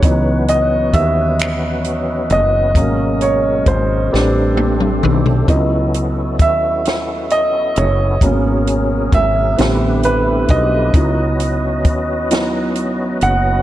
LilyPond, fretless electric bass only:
\new Staff \with { instrumentName = "Fretless electric bass" } { \clef bass \time 6/8 \key cis \minor \tempo 4. = 44 cis,4 dis,4. fis,,8 | gis,,4 gis,,8 a,,4 b,,8 | cis,4 dis,4. fis,,8 | gis,,4 gis,,8 a,,4 b,,8 |
cis,4 dis,4. fis,,8 | }